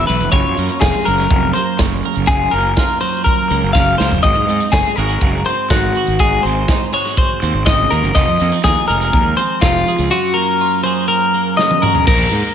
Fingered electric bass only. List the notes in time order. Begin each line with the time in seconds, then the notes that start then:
0.09 B1
0.21 F1
0.32 F#1
0.46 F#2
0.58 F#2
0.81 F1
1.08 F#1
1.30 F1
1.79 F#1
2.17 F#1
2.53 F#1
3.51 C#2
3.63 F#1
4.00 C#2
4.12 F#1
4.24 G#1
4.36 G#2
4.49 G#2
4.72 F#1
4.98 G#1
5.22 F#1
5.70 G#1
6.08 G#1
6.44 G#1
7.42 D#2
7.54 G#1
7.92 D#2
8.04 F#1
8.16 F1
8.28 F2
8.41 F2
8.64 D#2
8.90 F1
9.14 D#2
9.62 F1
9.99 C#2
12.07 A#1
12.32 G#2